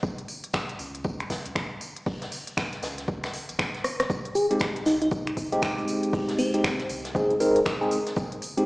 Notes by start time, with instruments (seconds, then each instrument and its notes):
0.03 sub bass F#1, kick, tambourine
0.18 closed hi-hat
0.28 open hi-hat, tambourine
0.44 closed hi-hat
0.53 finger snap, kick, snare, tambourine
0.68 closed hi-hat
0.79 sub bass C#2, open hi-hat, tambourine
0.95 closed hi-hat
1.04 kick, tambourine
1.20 finger snap, closed hi-hat
1.30 sub bass F#1, kick, snare, open hi-hat, tambourine
1.45 sub bass C#2, closed hi-hat
1.55 finger snap, kick, snare, tambourine
1.81 open hi-hat, tambourine
1.96 closed hi-hat
2.06 sub bass F#1, kick, open hi-hat
2.21 snare, closed hi-hat
2.32 open hi-hat, tambourine
2.47 closed hi-hat
2.57 finger snap, kick, snare, tambourine
2.73 snare, closed hi-hat
2.83 sub bass C#2, snare, open hi-hat, tambourine
2.98 snare, closed hi-hat
3.08 kick, tambourine
3.24 finger snap, snare, closed hi-hat, tambourine
3.34 snare, open hi-hat
3.49 sub bass E1, closed hi-hat, tambourine
3.59 finger snap, kick, snare
3.74 snare, closed hi-hat
3.84 cross-stick, open hi-hat, tambourine
4.00 sub bass F#1, cross-stick, snare, closed hi-hat
4.10 sub bass F1, kick, tambourine, cabasa
4.25 closed hi-hat, cabasa
4.35 fm electric piano G#4, open hi-hat, tambourine, cabasa
4.51 tine electric piano G#3 C4 D#4 G4, closed hi-hat, cabasa
4.60 finger snap, kick, snare, tambourine, cabasa
4.76 closed hi-hat, cabasa
4.85 sub bass C2, fm electric piano D#4, snare, open hi-hat, tambourine, cabasa
5.02 fm electric piano D#4, closed hi-hat, cabasa
5.11 kick, tambourine, cabasa
5.27 finger snap, closed hi-hat, cabasa
5.37 sub bass F1, kick, open hi-hat, tambourine, cabasa
5.52 sub bass C2, tine electric piano G#3 C4 D#4 G4, closed hi-hat, cabasa
5.62 finger snap, kick, snare, tambourine, cabasa
5.78 closed hi-hat, cabasa
5.88 open hi-hat, tambourine, cabasa
6.03 closed hi-hat, cabasa
6.13 sub bass F1, kick, open hi-hat, cabasa
6.28 snare, closed hi-hat, cabasa
6.39 fm electric piano C4, open hi-hat, tambourine, cabasa
6.54 tine electric piano G#3 C4 D#4 G4, closed hi-hat, cabasa
6.64 finger snap, kick, snare, tambourine, cabasa
6.79 snare, closed hi-hat, cabasa
6.89 sub bass C2, open hi-hat, tambourine, cabasa
7.04 snare, closed hi-hat, cabasa
7.15 tine electric piano G#3 C4 D#4 G#4, kick, tambourine, cabasa
7.30 closed hi-hat, cabasa
7.40 sub bass F1, tine electric piano G#3 C4 D#4 A#4, open hi-hat, tambourine, cabasa
7.56 sub bass C2, closed hi-hat, cabasa
7.65 finger snap, kick, snare, tambourine, cabasa
7.81 tine electric piano G#3 C4 D#4 G#4, cabasa
7.91 open hi-hat, tambourine, cabasa
8.07 snare, closed hi-hat, cabasa
8.16 sub bass F1, kick, tambourine, cabasa
8.32 closed hi-hat, cabasa
8.42 open hi-hat, tambourine, cabasa
8.57 tine electric piano G#3 C4 D#4 G4, closed hi-hat, cabasa